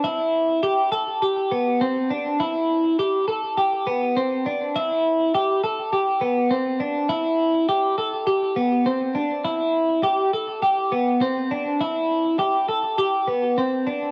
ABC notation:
X:1
M:4/4
L:1/8
Q:1/4=102
K:Am
V:1 name="Clean electric guitar"
E2 G A G B, C D | E2 G A G B, C D | E2 G A G B, C D | E2 G A G B, C D |
E2 G A G B, C D | E2 G A G B, C D |]